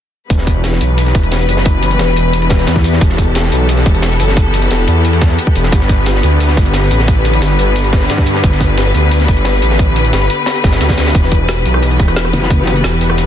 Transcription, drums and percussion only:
0.30 kick, closed hi-hat
0.38 snare
0.47 kick, closed hi-hat
0.64 snare, closed hi-hat
0.73 snare
0.81 closed hi-hat
0.98 closed hi-hat
1.06 snare, closed hi-hat
1.15 kick, closed hi-hat
1.23 closed hi-hat
1.32 snare, closed hi-hat
1.41 closed hi-hat
1.49 closed hi-hat
1.57 snare
1.65 kick, closed hi-hat
1.83 closed hi-hat
1.91 closed hi-hat
1.99 snare, closed hi-hat
2.16 closed hi-hat
2.33 closed hi-hat
2.42 closed hi-hat
2.50 kick, snare, closed hi-hat
2.59 snare, closed hi-hat
2.67 snare, closed hi-hat
2.76 kick, snare
2.84 closed hi-hat
2.93 snare
3.01 kick, closed hi-hat
3.09 snare
3.18 kick, closed hi-hat
3.35 snare, closed hi-hat
3.43 snare
3.52 closed hi-hat
3.69 closed hi-hat
3.77 snare, closed hi-hat
3.86 kick, closed hi-hat
3.95 closed hi-hat
4.02 snare, closed hi-hat
4.11 closed hi-hat
4.19 closed hi-hat
4.28 snare
4.37 kick, closed hi-hat
4.54 closed hi-hat
4.62 closed hi-hat
4.71 snare, closed hi-hat
4.87 closed hi-hat
5.05 closed hi-hat
5.13 closed hi-hat
5.21 kick, snare, closed hi-hat
5.30 snare, closed hi-hat
5.39 closed hi-hat
5.47 kick
5.55 closed hi-hat
5.63 snare
5.72 kick, closed hi-hat
5.81 snare
5.89 kick, closed hi-hat
6.06 snare, closed hi-hat
6.15 snare
6.23 closed hi-hat
6.40 closed hi-hat
6.48 snare, closed hi-hat
6.57 kick, closed hi-hat
6.66 closed hi-hat
6.74 snare, closed hi-hat
6.83 closed hi-hat
6.91 closed hi-hat
6.99 snare
7.08 kick, closed hi-hat
7.25 closed hi-hat
7.33 closed hi-hat
7.42 snare, closed hi-hat
7.59 closed hi-hat
7.76 closed hi-hat
7.84 closed hi-hat
7.93 kick, snare, closed hi-hat
8.01 snare, closed hi-hat
8.09 snare, closed hi-hat
8.18 kick, snare
8.26 closed hi-hat
8.35 snare
8.44 kick, closed hi-hat
8.52 snare
8.61 kick, closed hi-hat
8.78 snare, closed hi-hat
8.86 snare
8.94 closed hi-hat
9.11 closed hi-hat
9.20 snare, closed hi-hat
9.28 kick, closed hi-hat
9.37 closed hi-hat
9.45 snare, closed hi-hat
9.54 closed hi-hat
9.62 closed hi-hat
9.71 snare
9.79 kick, closed hi-hat
9.96 closed hi-hat
10.05 closed hi-hat
10.13 snare, closed hi-hat
10.30 closed hi-hat
10.46 snare, closed hi-hat
10.56 closed hi-hat
10.64 kick, snare, closed hi-hat
10.72 snare, closed hi-hat
10.81 snare, closed hi-hat
10.89 kick, snare, closed hi-hat
10.98 snare, closed hi-hat
11.06 snare, closed hi-hat
11.15 kick, closed hi-hat
11.23 snare
11.32 kick, closed hi-hat
11.48 snare, closed hi-hat
11.57 snare
11.65 closed hi-hat
11.74 cross-stick
11.82 closed hi-hat
11.91 closed hi-hat
11.99 kick, closed hi-hat
12.08 cross-stick, closed hi-hat
12.16 snare, closed hi-hat
12.25 cross-stick, closed hi-hat
12.33 closed hi-hat
12.43 snare
12.50 kick, closed hi-hat
12.67 closed hi-hat
12.76 closed hi-hat
12.84 snare, closed hi-hat
13.01 closed hi-hat
13.10 cross-stick
13.17 closed hi-hat

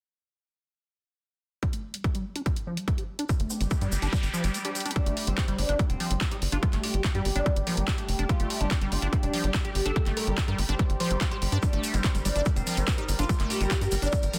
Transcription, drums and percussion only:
1.63 kick, closed hi-hat
1.73 closed hi-hat
1.94 closed hi-hat
2.04 kick, closed hi-hat
2.15 closed hi-hat
2.36 closed hi-hat
2.46 kick, closed hi-hat
2.56 closed hi-hat
2.77 closed hi-hat
2.88 kick, closed hi-hat
2.98 closed hi-hat
3.19 closed hi-hat
3.29 kick, closed hi-hat, shaker
3.40 closed hi-hat
3.50 shaker
3.61 closed hi-hat, shaker
3.71 kick, closed hi-hat, shaker
3.81 closed hi-hat, shaker
3.92 shaker
4.02 closed hi-hat, shaker
4.13 kick, closed hi-hat, shaker
4.23 closed hi-hat, shaker
4.34 shaker
4.44 closed hi-hat, shaker
4.54 closed hi-hat, shaker
4.65 closed hi-hat
4.75 closed hi-hat, shaker
4.80 closed hi-hat
4.86 closed hi-hat, shaker
4.91 closed hi-hat
4.96 kick, closed hi-hat
5.06 closed hi-hat
5.17 open hi-hat
5.27 closed hi-hat
5.38 kick, clap, closed hi-hat
5.48 closed hi-hat
5.58 open hi-hat
5.69 closed hi-hat
5.79 kick, closed hi-hat
5.90 closed hi-hat
6.00 open hi-hat
6.11 closed hi-hat
6.21 kick, clap, closed hi-hat
6.31 closed hi-hat
6.42 open hi-hat
6.52 closed hi-hat
6.63 kick, closed hi-hat
6.73 clap, closed hi-hat
6.83 open hi-hat
6.94 closed hi-hat
7.04 kick, clap, closed hi-hat
7.15 closed hi-hat
7.25 open hi-hat
7.36 closed hi-hat
7.46 kick, closed hi-hat
7.56 closed hi-hat
7.67 open hi-hat
7.77 closed hi-hat
7.88 kick, clap, closed hi-hat
7.98 closed hi-hat
8.09 open hi-hat
8.19 closed hi-hat
8.29 kick, closed hi-hat
8.40 closed hi-hat
8.50 open hi-hat
8.61 closed hi-hat
8.71 kick, clap, closed hi-hat
8.81 closed hi-hat
8.92 open hi-hat
9.02 closed hi-hat
9.13 kick, closed hi-hat
9.23 closed hi-hat
9.33 open hi-hat
9.44 closed hi-hat
9.54 kick, clap, closed hi-hat
9.65 closed hi-hat
9.75 open hi-hat
9.86 closed hi-hat
9.96 kick, closed hi-hat
10.06 clap, closed hi-hat
10.17 open hi-hat
10.27 closed hi-hat
10.38 kick, clap, closed hi-hat
10.48 closed hi-hat
10.58 open hi-hat
10.69 closed hi-hat
10.79 kick, closed hi-hat
10.90 closed hi-hat
11.00 open hi-hat
11.11 closed hi-hat
11.21 kick, clap, closed hi-hat
11.31 closed hi-hat
11.42 open hi-hat
11.52 closed hi-hat
11.62 kick, closed hi-hat, shaker
11.73 closed hi-hat
11.83 open hi-hat, shaker
11.94 closed hi-hat, shaker
12.04 kick, clap, closed hi-hat, shaker
12.15 closed hi-hat, shaker
12.25 open hi-hat, shaker
12.35 closed hi-hat, shaker
12.45 kick, closed hi-hat, shaker
12.56 closed hi-hat, shaker
12.67 open hi-hat, shaker
12.77 closed hi-hat, shaker
12.88 kick, clap, closed hi-hat, shaker
12.98 closed hi-hat
13.08 open hi-hat, shaker
13.19 closed hi-hat, shaker
13.29 kick, closed hi-hat, shaker
13.40 clap, closed hi-hat
13.50 open hi-hat, shaker
13.61 closed hi-hat, shaker
13.71 kick, clap, closed hi-hat, shaker
13.81 closed hi-hat, shaker
13.91 open hi-hat, shaker
14.02 closed hi-hat, shaker
14.12 kick, closed hi-hat, shaker
14.23 closed hi-hat, shaker
14.33 open hi-hat, shaker

